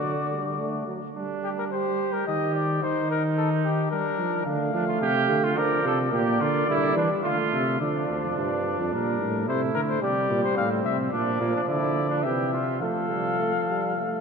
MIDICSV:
0, 0, Header, 1, 5, 480
1, 0, Start_track
1, 0, Key_signature, -2, "minor"
1, 0, Tempo, 564972
1, 985, Time_signature, 3, 2, 24, 8
1, 2407, Tempo, 552995
1, 9612, Key_signature, -1, "major"
1, 10087, Tempo, 575816
1, 12192, End_track
2, 0, Start_track
2, 0, Title_t, "Cornet"
2, 0, Program_c, 0, 56
2, 0, Note_on_c, 0, 74, 69
2, 716, Note_off_c, 0, 74, 0
2, 1218, Note_on_c, 0, 67, 77
2, 1272, Note_off_c, 0, 67, 0
2, 1341, Note_on_c, 0, 70, 73
2, 1395, Note_off_c, 0, 70, 0
2, 1454, Note_on_c, 0, 72, 83
2, 1808, Note_on_c, 0, 70, 81
2, 1821, Note_off_c, 0, 72, 0
2, 1922, Note_off_c, 0, 70, 0
2, 1927, Note_on_c, 0, 75, 87
2, 2156, Note_off_c, 0, 75, 0
2, 2161, Note_on_c, 0, 74, 71
2, 2390, Note_off_c, 0, 74, 0
2, 2395, Note_on_c, 0, 72, 83
2, 2634, Note_off_c, 0, 72, 0
2, 2642, Note_on_c, 0, 70, 80
2, 2749, Note_off_c, 0, 70, 0
2, 2872, Note_on_c, 0, 69, 75
2, 2981, Note_off_c, 0, 69, 0
2, 3114, Note_on_c, 0, 67, 82
2, 3335, Note_off_c, 0, 67, 0
2, 3340, Note_on_c, 0, 70, 87
2, 3810, Note_off_c, 0, 70, 0
2, 3817, Note_on_c, 0, 77, 78
2, 4761, Note_off_c, 0, 77, 0
2, 4777, Note_on_c, 0, 74, 82
2, 5252, Note_off_c, 0, 74, 0
2, 5262, Note_on_c, 0, 74, 90
2, 6215, Note_off_c, 0, 74, 0
2, 6234, Note_on_c, 0, 77, 69
2, 6344, Note_off_c, 0, 77, 0
2, 6473, Note_on_c, 0, 76, 69
2, 6713, Note_off_c, 0, 76, 0
2, 6718, Note_on_c, 0, 74, 63
2, 7179, Note_off_c, 0, 74, 0
2, 7210, Note_on_c, 0, 74, 67
2, 7689, Note_off_c, 0, 74, 0
2, 7700, Note_on_c, 0, 70, 70
2, 8169, Note_off_c, 0, 70, 0
2, 8179, Note_on_c, 0, 72, 82
2, 8286, Note_off_c, 0, 72, 0
2, 8407, Note_on_c, 0, 70, 86
2, 8463, Note_off_c, 0, 70, 0
2, 8527, Note_on_c, 0, 72, 83
2, 8642, Note_off_c, 0, 72, 0
2, 8647, Note_on_c, 0, 74, 77
2, 9001, Note_off_c, 0, 74, 0
2, 9006, Note_on_c, 0, 72, 90
2, 9115, Note_off_c, 0, 72, 0
2, 9121, Note_on_c, 0, 77, 83
2, 9232, Note_off_c, 0, 77, 0
2, 9363, Note_on_c, 0, 76, 79
2, 9472, Note_off_c, 0, 76, 0
2, 9597, Note_on_c, 0, 74, 80
2, 10072, Note_off_c, 0, 74, 0
2, 10084, Note_on_c, 0, 74, 80
2, 10540, Note_on_c, 0, 76, 70
2, 10552, Note_off_c, 0, 74, 0
2, 11016, Note_off_c, 0, 76, 0
2, 11021, Note_on_c, 0, 77, 80
2, 12192, Note_off_c, 0, 77, 0
2, 12192, End_track
3, 0, Start_track
3, 0, Title_t, "Trumpet"
3, 0, Program_c, 1, 56
3, 0, Note_on_c, 1, 66, 71
3, 714, Note_off_c, 1, 66, 0
3, 989, Note_on_c, 1, 62, 74
3, 1430, Note_off_c, 1, 62, 0
3, 1468, Note_on_c, 1, 67, 71
3, 1928, Note_off_c, 1, 67, 0
3, 1936, Note_on_c, 1, 67, 72
3, 2406, Note_on_c, 1, 63, 83
3, 2419, Note_off_c, 1, 67, 0
3, 3345, Note_off_c, 1, 63, 0
3, 3350, Note_on_c, 1, 62, 72
3, 3815, Note_off_c, 1, 62, 0
3, 3827, Note_on_c, 1, 62, 68
3, 4061, Note_off_c, 1, 62, 0
3, 4065, Note_on_c, 1, 62, 90
3, 4177, Note_off_c, 1, 62, 0
3, 4182, Note_on_c, 1, 65, 82
3, 4298, Note_off_c, 1, 65, 0
3, 4303, Note_on_c, 1, 67, 107
3, 4671, Note_on_c, 1, 65, 91
3, 4684, Note_off_c, 1, 67, 0
3, 4790, Note_on_c, 1, 70, 95
3, 4803, Note_off_c, 1, 65, 0
3, 5027, Note_off_c, 1, 70, 0
3, 5046, Note_on_c, 1, 69, 83
3, 5150, Note_off_c, 1, 69, 0
3, 5279, Note_on_c, 1, 67, 90
3, 5514, Note_on_c, 1, 65, 85
3, 5527, Note_off_c, 1, 67, 0
3, 5753, Note_off_c, 1, 65, 0
3, 5759, Note_on_c, 1, 64, 102
3, 5993, Note_off_c, 1, 64, 0
3, 6002, Note_on_c, 1, 62, 84
3, 6109, Note_off_c, 1, 62, 0
3, 6236, Note_on_c, 1, 65, 97
3, 6716, Note_off_c, 1, 65, 0
3, 6730, Note_on_c, 1, 62, 70
3, 8147, Note_off_c, 1, 62, 0
3, 8178, Note_on_c, 1, 64, 76
3, 8641, Note_off_c, 1, 64, 0
3, 8646, Note_on_c, 1, 67, 81
3, 9120, Note_on_c, 1, 60, 73
3, 9133, Note_off_c, 1, 67, 0
3, 9601, Note_off_c, 1, 60, 0
3, 9606, Note_on_c, 1, 62, 88
3, 9842, Note_off_c, 1, 62, 0
3, 9849, Note_on_c, 1, 58, 78
3, 9966, Note_off_c, 1, 58, 0
3, 9978, Note_on_c, 1, 62, 78
3, 10030, Note_off_c, 1, 62, 0
3, 10091, Note_on_c, 1, 64, 83
3, 10428, Note_off_c, 1, 64, 0
3, 10433, Note_on_c, 1, 62, 81
3, 10559, Note_on_c, 1, 67, 78
3, 10572, Note_off_c, 1, 62, 0
3, 10790, Note_off_c, 1, 67, 0
3, 10795, Note_on_c, 1, 65, 72
3, 11031, Note_off_c, 1, 65, 0
3, 11037, Note_on_c, 1, 69, 83
3, 12192, Note_off_c, 1, 69, 0
3, 12192, End_track
4, 0, Start_track
4, 0, Title_t, "Trombone"
4, 0, Program_c, 2, 57
4, 5, Note_on_c, 2, 54, 55
4, 115, Note_off_c, 2, 54, 0
4, 249, Note_on_c, 2, 55, 56
4, 499, Note_on_c, 2, 57, 65
4, 512, Note_off_c, 2, 55, 0
4, 734, Note_off_c, 2, 57, 0
4, 739, Note_on_c, 2, 54, 59
4, 849, Note_off_c, 2, 54, 0
4, 3817, Note_on_c, 2, 57, 82
4, 4769, Note_on_c, 2, 53, 72
4, 4782, Note_off_c, 2, 57, 0
4, 5250, Note_off_c, 2, 53, 0
4, 5255, Note_on_c, 2, 58, 87
4, 5735, Note_off_c, 2, 58, 0
4, 5743, Note_on_c, 2, 55, 76
4, 6220, Note_off_c, 2, 55, 0
4, 6226, Note_on_c, 2, 57, 75
4, 6710, Note_off_c, 2, 57, 0
4, 6726, Note_on_c, 2, 53, 72
4, 7668, Note_off_c, 2, 53, 0
4, 7695, Note_on_c, 2, 55, 62
4, 8157, Note_off_c, 2, 55, 0
4, 8162, Note_on_c, 2, 57, 80
4, 8641, Note_on_c, 2, 55, 81
4, 8654, Note_off_c, 2, 57, 0
4, 9597, Note_off_c, 2, 55, 0
4, 9603, Note_on_c, 2, 53, 86
4, 10543, Note_on_c, 2, 52, 74
4, 10556, Note_off_c, 2, 53, 0
4, 10883, Note_off_c, 2, 52, 0
4, 11025, Note_on_c, 2, 57, 68
4, 11268, Note_on_c, 2, 55, 60
4, 11280, Note_off_c, 2, 57, 0
4, 11508, Note_off_c, 2, 55, 0
4, 11513, Note_on_c, 2, 57, 67
4, 11624, Note_off_c, 2, 57, 0
4, 11757, Note_on_c, 2, 55, 65
4, 11991, Note_off_c, 2, 55, 0
4, 11996, Note_on_c, 2, 57, 63
4, 12192, Note_off_c, 2, 57, 0
4, 12192, End_track
5, 0, Start_track
5, 0, Title_t, "Tuba"
5, 0, Program_c, 3, 58
5, 0, Note_on_c, 3, 50, 70
5, 719, Note_off_c, 3, 50, 0
5, 988, Note_on_c, 3, 55, 74
5, 1902, Note_off_c, 3, 55, 0
5, 1938, Note_on_c, 3, 51, 67
5, 2399, Note_off_c, 3, 51, 0
5, 2406, Note_on_c, 3, 51, 78
5, 3335, Note_off_c, 3, 51, 0
5, 3350, Note_on_c, 3, 55, 67
5, 3582, Note_on_c, 3, 53, 71
5, 3595, Note_off_c, 3, 55, 0
5, 3814, Note_off_c, 3, 53, 0
5, 3819, Note_on_c, 3, 50, 77
5, 4057, Note_off_c, 3, 50, 0
5, 4065, Note_on_c, 3, 53, 74
5, 4301, Note_off_c, 3, 53, 0
5, 4305, Note_on_c, 3, 48, 79
5, 4539, Note_on_c, 3, 50, 77
5, 4552, Note_off_c, 3, 48, 0
5, 4782, Note_off_c, 3, 50, 0
5, 4788, Note_on_c, 3, 50, 71
5, 5021, Note_off_c, 3, 50, 0
5, 5027, Note_on_c, 3, 48, 74
5, 5262, Note_off_c, 3, 48, 0
5, 5267, Note_on_c, 3, 46, 83
5, 5503, Note_off_c, 3, 46, 0
5, 5510, Note_on_c, 3, 50, 80
5, 5740, Note_off_c, 3, 50, 0
5, 5746, Note_on_c, 3, 50, 80
5, 5986, Note_off_c, 3, 50, 0
5, 5990, Note_on_c, 3, 52, 76
5, 6101, Note_off_c, 3, 52, 0
5, 6234, Note_on_c, 3, 50, 70
5, 6345, Note_off_c, 3, 50, 0
5, 6482, Note_on_c, 3, 48, 78
5, 6719, Note_off_c, 3, 48, 0
5, 6724, Note_on_c, 3, 50, 72
5, 6954, Note_off_c, 3, 50, 0
5, 6977, Note_on_c, 3, 38, 71
5, 7088, Note_off_c, 3, 38, 0
5, 7093, Note_on_c, 3, 41, 66
5, 7212, Note_off_c, 3, 41, 0
5, 7217, Note_on_c, 3, 43, 75
5, 7575, Note_off_c, 3, 43, 0
5, 7580, Note_on_c, 3, 41, 75
5, 7704, Note_on_c, 3, 46, 69
5, 7717, Note_off_c, 3, 41, 0
5, 7931, Note_off_c, 3, 46, 0
5, 7936, Note_on_c, 3, 45, 81
5, 8174, Note_on_c, 3, 48, 77
5, 8187, Note_off_c, 3, 45, 0
5, 8411, Note_off_c, 3, 48, 0
5, 8416, Note_on_c, 3, 50, 69
5, 8647, Note_off_c, 3, 50, 0
5, 8652, Note_on_c, 3, 48, 71
5, 8888, Note_off_c, 3, 48, 0
5, 8893, Note_on_c, 3, 46, 76
5, 9001, Note_off_c, 3, 46, 0
5, 9133, Note_on_c, 3, 45, 76
5, 9362, Note_off_c, 3, 45, 0
5, 9367, Note_on_c, 3, 48, 76
5, 9604, Note_off_c, 3, 48, 0
5, 9610, Note_on_c, 3, 46, 85
5, 9844, Note_off_c, 3, 46, 0
5, 9849, Note_on_c, 3, 46, 79
5, 9957, Note_off_c, 3, 46, 0
5, 10087, Note_on_c, 3, 50, 83
5, 10558, Note_on_c, 3, 48, 73
5, 10571, Note_off_c, 3, 50, 0
5, 11033, Note_on_c, 3, 53, 75
5, 11046, Note_off_c, 3, 48, 0
5, 12192, Note_off_c, 3, 53, 0
5, 12192, End_track
0, 0, End_of_file